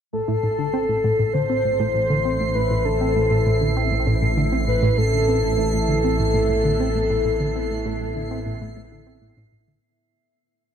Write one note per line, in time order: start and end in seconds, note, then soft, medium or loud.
0.13 9.80 A1 medium
0.13 9.83 A2 medium
0.13 0.21 A2 medium
0.13 1.35 A4 loud
0.13 9.84 C7 medium
0.25 0.36 A2 loud
0.25 9.83 A3 medium
0.25 9.83 E4 medium
0.43 0.48 A2 medium
0.49 5.65 C4 medium
0.59 0.66 D3 medium
0.74 0.85 C4 medium
0.89 0.97 A2 medium
1.04 1.12 A2 medium
1.15 9.83 E5 medium
1.19 1.24 A2 medium
1.33 1.42 D3 medium
1.33 2.56 C5 loud
1.50 1.61 C4 medium
1.65 1.73 A2 medium
1.80 1.88 A2 loud
1.95 2.00 A2 medium
2.10 2.18 D3 medium
2.25 2.37 C4 medium
2.40 2.48 A2 medium
2.55 2.63 A2 medium
2.55 2.86 B4 loud
2.71 2.75 A2 medium
2.85 2.94 D3 medium
2.85 4.07 A4 medium
3.01 3.13 C4 medium
3.16 3.24 A2 medium
3.31 3.39 A2 medium
3.46 3.51 A2 medium
3.61 3.69 D3 medium
3.77 3.88 C4 medium
3.91 3.99 A2 medium
4.07 4.15 A2 medium
4.22 4.27 A2 medium
4.37 4.45 D3 medium
4.52 4.64 C4 medium
4.67 4.75 A2 medium
4.67 4.99 B4 loud
4.83 4.91 A2 loud
4.98 5.03 A2 medium
4.98 5.88 A4 loud
5.13 5.21 D3 medium
5.28 5.40 C4 medium
5.43 5.51 A2 medium
5.43 9.83 B3 medium
5.58 5.66 A2 loud
5.74 5.78 A2 medium
5.89 5.97 D3 medium
5.89 9.18 A4 loud
6.04 6.16 C4 medium
6.19 6.27 A2 medium
6.34 6.42 A2 loud
6.50 6.54 A2 medium
6.65 6.72 D3 medium
6.80 6.92 C4 medium
6.95 7.03 A2 medium
7.10 7.18 A2 medium
7.25 7.30 A2 medium
7.40 7.48 D3 medium
7.56 7.67 C4 medium
7.71 7.79 A2 medium
7.86 7.94 A2 loud
8.01 8.06 A2 medium
8.16 8.24 D3 medium
8.31 8.43 C4 medium
8.46 8.54 A2 medium
8.61 8.69 A2 loud
8.77 8.81 A2 medium
8.92 9.00 D3 medium
9.07 9.19 C4 medium
9.22 9.30 A2 medium
9.37 9.45 A2 loud
9.52 9.57 A2 medium
9.68 9.76 D3 medium